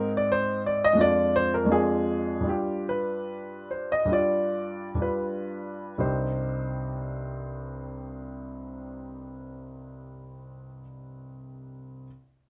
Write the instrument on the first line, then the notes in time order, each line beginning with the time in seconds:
grand piano
Already playing: G#2 G#3 C4 D#4
0.17 D5
0.32 C5
0.66 D5
0.84 D#5
0.93 F2 G#3 D4
0.99 F4 D5
1.36 C5
1.54 A#4
1.65 F2 G#3 D4
1.70 F4 G#4
2.41 G2 G3
2.45 D4 F4 G4
2.89 B4
3.71 C5
3.92 D#5
4.05 G2 G3 D4
4.11 F4 D5
4.95 G2 G3 D4
5.00 F4 B4
5.98 C2 G2 G3 C4 D#4 G4 C5